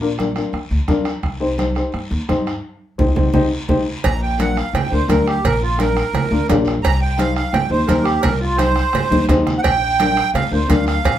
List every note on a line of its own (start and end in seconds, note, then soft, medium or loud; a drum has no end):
0.00 0.40 A#1 medium
0.00 0.07 D4 medium
0.00 0.07 F4 medium
0.00 0.08 A#4 medium
0.18 0.24 D4 medium
0.18 0.25 F4 medium
0.18 0.25 A#4 medium
0.18 bombo rim medium
0.18 high conga medium
0.18 short guiro medium
0.36 0.54 D4 medium
0.36 0.54 F4 medium
0.36 0.55 A#4 medium
0.36 bombo rim medium
0.36 short guiro medium
0.53 0.67 F2 medium
0.53 bombo rim medium
0.53 high conga soft
0.53 long guiro medium
0.71 0.78 D2 medium
0.88 1.16 F2 medium
0.88 1.07 D4 medium
0.88 1.07 F4 medium
0.88 1.07 A#4 medium
0.88 bombo low medium
0.88 bombo rim medium
0.88 high conga medium
0.88 short guiro medium
1.05 bombo rim medium
1.05 short guiro medium
1.23 1.79 C2 medium
1.23 bombo low medium
1.23 bombo rim medium
1.23 high conga soft
1.23 long guiro medium
1.40 1.47 D#4 medium
1.40 1.47 G4 medium
1.40 1.47 C5 medium
1.58 1.65 D#4 medium
1.58 1.64 G4 medium
1.58 1.65 C5 medium
1.58 bombo rim medium
1.58 high conga medium
1.58 short guiro medium
1.75 1.95 D#4 medium
1.75 1.95 G4 medium
1.75 1.95 C5 medium
1.75 bombo rim medium
1.75 short guiro medium
1.92 2.08 G2 medium
1.92 bombo rim medium
1.92 high conga soft
1.92 long guiro medium
2.11 2.18 D#2 loud
2.29 2.57 G2 medium
2.29 2.47 D#4 medium
2.29 2.47 G4 medium
2.29 2.47 C5 medium
2.29 bombo low medium
2.29 bombo rim medium
2.29 high conga medium
2.29 short guiro medium
2.47 bombo rim medium
2.47 short guiro medium
2.98 3.12 C2 medium
2.98 3.10 D#4 medium
2.98 3.10 G4 medium
2.98 3.10 C5 medium
2.98 bombo low medium
2.98 low conga medium
2.98 long guiro medium
3.16 3.29 C2 medium
3.16 3.28 D#4 medium
3.16 3.27 G4 medium
3.16 3.27 C5 medium
3.16 bombo low medium
3.16 low conga medium
3.16 long guiro medium
3.33 3.47 C2 medium
3.33 3.45 D#4 loud
3.33 3.45 G4 loud
3.33 3.45 C5 loud
3.33 bombo low medium
3.33 low conga medium
3.33 long guiro medium
3.68 3.82 C2 medium
3.68 3.80 D#4 medium
3.68 3.80 G4 medium
3.68 3.80 C5 medium
3.68 bombo low medium
3.68 low conga medium
3.68 long guiro medium
4.03 4.60 A#1 loud
4.03 4.21 A#5 loud
4.03 bombo low medium
4.03 bombo rim medium
4.03 cowbell loud
4.03 high conga soft
4.03 long guiro medium
4.22 4.39 G5 medium
4.38 4.57 D4 medium
4.38 4.57 F4 medium
4.38 4.58 A#4 medium
4.38 4.57 F#5 medium
4.38 bombo rim medium
4.38 cowbell medium
4.38 high conga medium
4.38 short guiro medium
4.56 4.74 F5 medium
4.56 bombo rim medium
4.56 short guiro medium
4.73 4.88 F2 medium
4.73 4.91 G5 medium
4.73 bombo rim medium
4.73 cowbell medium
4.73 high conga soft
4.73 low conga medium
4.73 long guiro medium
4.91 5.06 D2 medium
4.91 4.98 D4 medium
4.91 4.98 F4 medium
4.91 4.98 A#4 medium
4.91 5.08 C5 medium
5.08 5.37 D2 loud
5.08 5.33 D4 medium
5.08 5.33 F4 medium
5.08 5.33 A#4 medium
5.08 5.26 A#4 medium
5.08 bombo low medium
5.08 bombo rim medium
5.08 cowbell medium
5.08 high conga medium
5.08 short guiro medium
5.26 5.44 G4 medium
5.26 bombo rim medium
5.26 short guiro medium
5.44 6.00 A#1 medium
5.44 5.62 A#4 medium
5.44 bombo low medium
5.44 bombo rim medium
5.44 cowbell loud
5.44 high conga soft
5.44 low conga medium
5.44 long guiro medium
5.63 5.79 F4 medium
5.78 5.97 D4 medium
5.78 5.97 F4 medium
5.78 5.98 A#4 medium
5.78 6.47 A#4 medium
5.78 bombo rim medium
5.78 cowbell medium
5.78 high conga medium
5.78 short guiro medium
5.97 bombo rim medium
5.97 short guiro medium
6.13 6.28 F2 medium
6.13 bombo rim medium
6.13 cowbell medium
6.13 high conga soft
6.13 low conga medium
6.13 long guiro medium
6.31 6.45 D2 medium
6.31 6.37 D4 medium
6.31 6.38 F4 medium
6.31 6.38 A#4 medium
6.48 6.77 A#1 loud
6.48 6.74 D4 loud
6.48 6.74 F4 medium
6.48 6.74 A#4 loud
6.48 bombo low medium
6.48 bombo rim medium
6.48 cowbell medium
6.48 high conga medium
6.48 low timbale medium
6.48 short guiro medium
6.65 bombo rim medium
6.65 short guiro medium
6.82 7.40 C2 medium
6.82 7.00 A#5 loud
6.82 bombo low medium
6.82 bombo rim medium
6.82 cowbell loud
6.82 high conga soft
6.82 long guiro medium
7.01 7.18 G5 medium
7.17 7.37 D#4 medium
7.17 7.37 G4 medium
7.17 7.37 C5 medium
7.17 7.34 F5 medium
7.17 bombo rim medium
7.17 cowbell medium
7.17 high conga medium
7.17 short guiro medium
7.35 7.53 F5 medium
7.35 bombo rim medium
7.35 short guiro medium
7.52 7.67 G2 medium
7.52 7.70 G5 medium
7.52 bombo rim medium
7.52 cowbell medium
7.52 high conga soft
7.52 low conga medium
7.52 long guiro medium
7.70 7.85 D#2 medium
7.70 7.77 D#4 medium
7.70 7.77 G4 medium
7.70 7.88 C5 medium
7.70 7.78 C5 medium
7.87 8.17 D#2 medium
7.87 8.13 D#4 medium
7.87 8.13 G4 medium
7.87 8.05 A#4 medium
7.87 8.13 C5 medium
7.87 bombo low medium
7.87 bombo rim medium
7.87 cowbell medium
7.87 high conga medium
7.87 short guiro medium
8.03 8.22 G4 medium
8.03 bombo rim medium
8.03 short guiro medium
8.21 8.80 C2 loud
8.21 8.40 A#4 medium
8.21 bombo low medium
8.21 bombo rim medium
8.21 cowbell loud
8.21 high conga soft
8.21 low conga medium
8.21 long guiro medium
8.40 8.58 F4 medium
8.57 8.77 D#4 medium
8.57 8.77 G4 medium
8.57 9.26 C5 loud
8.57 8.77 C5 medium
8.57 bombo rim medium
8.57 cowbell medium
8.57 high conga medium
8.57 short guiro medium
8.76 bombo rim medium
8.76 short guiro medium
8.93 9.08 G2 medium
8.93 bombo rim medium
8.93 cowbell medium
8.93 high conga soft
8.93 low conga medium
8.93 long guiro medium
9.11 9.25 D#2 medium
9.11 9.17 D#4 medium
9.11 9.17 G4 medium
9.11 9.18 C5 medium
9.11 high conga medium
9.28 9.57 D#2 medium
9.28 9.53 D#4 medium
9.28 9.54 G4 medium
9.28 9.54 C5 loud
9.28 bombo low medium
9.28 bombo rim medium
9.28 cowbell medium
9.28 low conga medium
9.28 short guiro medium
9.47 bombo rim medium
9.47 low conga medium
9.47 short guiro medium
9.58 9.61 F#5 medium
9.62 10.20 A#1 medium
9.62 10.31 G5 loud
9.62 bombo low medium
9.62 bombo rim medium
9.62 cowbell loud
9.62 high conga soft
9.62 long guiro medium
9.99 10.18 D4 medium
9.99 10.18 F4 medium
9.99 10.18 A#4 medium
9.99 bombo rim medium
9.99 cowbell medium
9.99 high conga medium
9.99 short guiro medium
10.16 bombo rim medium
10.16 short guiro medium
10.34 10.48 F2 medium
10.34 10.51 F5 medium
10.34 bombo rim medium
10.34 cowbell medium
10.34 high conga soft
10.34 low conga medium
10.34 long guiro medium
10.52 10.66 D2 medium
10.52 10.58 D4 medium
10.52 10.58 F4 medium
10.52 10.58 A#4 medium
10.52 10.69 C5 medium
10.68 10.97 D2 medium
10.68 10.93 D4 medium
10.68 10.93 F4 medium
10.68 10.94 A#4 medium
10.68 10.85 F5 medium
10.68 bombo low medium
10.68 bombo rim medium
10.68 cowbell medium
10.68 high conga medium
10.68 short guiro medium
10.87 11.19 F5 medium
10.87 bombo rim medium
10.87 short guiro medium
11.04 11.19 A#1 medium
11.04 bombo low medium
11.04 bombo rim medium
11.04 cowbell loud
11.04 high conga soft
11.04 low conga medium
11.04 long guiro medium